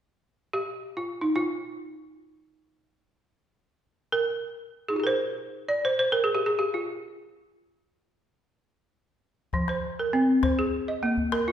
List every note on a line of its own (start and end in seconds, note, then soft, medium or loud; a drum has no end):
0.53 0.98 G4 medium
0.97 1.19 F4 medium
1.21 1.35 D#4 medium
1.36 2.79 F4 medium
4.12 4.84 A#4 medium
4.89 5.04 D#4 soft
4.89 4.98 G#4 medium
4.93 5.07 F4 soft
4.93 5.10 G4 soft
5.00 5.14 G#4 soft
5.00 5.18 A#4 medium
5.07 5.70 C5 medium
5.69 5.85 D5 medium
5.85 5.98 C5 medium
5.99 6.11 C5 medium
6.12 6.24 A#4 medium
6.24 6.34 G#4 medium
6.35 6.46 G4 medium
6.46 6.58 G#4 medium
6.59 6.73 G4 medium
6.74 7.81 F4 medium
9.53 9.83 F3 medium
9.53 calabash thump medium
9.68 10.13 C5 medium
9.68 calabash click soft
9.99 10.43 A#4 medium
10.13 10.43 C4 medium
10.13 calabash click soft
10.43 10.88 C5 medium
10.43 calabash thump medium
10.43 calabash click medium
10.59 10.73 G#4 medium
10.88 11.33 D#5 medium
11.03 11.32 A#3 medium
11.17 calabash thump soft
11.32 11.52 A#4 medium
11.32 calabash click medium
11.48 11.52 F4 medium